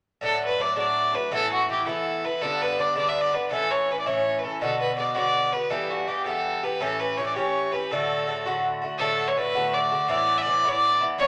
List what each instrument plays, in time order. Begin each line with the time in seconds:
0.21 bouzouki A2 F#3 A3 D4, fiddle A4
0.45 fiddle B4
0.58 bouzouki A2 F#3 A3 D4, fiddle D5
0.76 bouzouki A2 F#3 A3 D4, fiddle D5
1.13 bouzouki F#3 A3 D4, fiddle B4
1.31 bouzouki A2 E3 B3 E4, fiddle A4
1.53 fiddle F#4
1.69 bouzouki A2 E3 B3 E4, fiddle G4
1.86 bouzouki A2 E3 B3 E4, fiddle A4
2.24 bouzouki E3 B3 E4, fiddle B4
2.41 bouzouki G2 D3 B3 D4, fiddle A4
2.62 fiddle B4
2.77 bouzouki G2 D3 B3 D4, fiddle D5
2.95 bouzouki G2 D3 B3 D4, fiddle D5
3.09 fiddle E5
3.21 fiddle D5
3.33 bouzouki D3 B3 D4, fiddle B4
3.51 bouzouki A2 E3 C#4 E4, fiddle A4
3.71 fiddle C#5
3.89 bouzouki A2 E3 C#4 E4, fiddle B4
4.00 fiddle D5
4.06 bouzouki A2 E3 C#4 E4, fiddle C#5
4.38 fiddle B4
4.43 bouzouki E3 C#4 E4, fiddle A4
4.61 bouzouki B2 D3 B3 F#4, fiddle A4
4.80 fiddle B4
4.98 bouzouki B2 D3 B3 F#4, fiddle D5
5.15 bouzouki B2 D3 B3 F#4, fiddle D5
5.52 bouzouki D3 B3 F#4, fiddle B4
5.70 bouzouki G2 E3 B3 G4, fiddle A4
5.90 fiddle F#4
6.08 bouzouki G2 E3 B3 G4, fiddle G4
6.26 bouzouki G2 E3 B3 G4, fiddle A4
6.63 bouzouki E3 B3 G4, fiddle B4
6.80 bouzouki A2 E3 C#4 G4, fiddle A4
7.00 fiddle B4
7.17 bouzouki A2 E3 C#4 G4, fiddle C#5
7.26 fiddle D5
7.34 bouzouki E3 C#4 G4, fiddle C#5
7.39 bouzouki A2
7.72 bouzouki E3 C#4 G4, fiddle B4
7.90 bouzouki A2 D3 A3 F#4, fiddle A4
8.27 bouzouki A2 D3 A3 F#4
8.46 bouzouki A2 D3 A3 F#4
8.82 bouzouki D3 A3 F#4
8.99 bouzouki A2 D3 A3 F#4, fiddle A4
9.28 fiddle C#5
9.37 bouzouki A2 D3 A3 F#4, fiddle B4
9.55 bouzouki A2 D3 A3 F#4
9.73 fiddle D5
9.91 bouzouki D3 A3 F#4
10.08 bouzouki A2 E3 B3 E4, fiddle D5
10.38 fiddle E5
10.42 bouzouki A2, fiddle D5
10.47 bouzouki E3 B3 E4
10.64 bouzouki A2 E3 B3 E4
10.68 fiddle C#5 D5
11.01 bouzouki E3 B3 E4
11.18 bouzouki G2 D3 B3 D4, fiddle C#5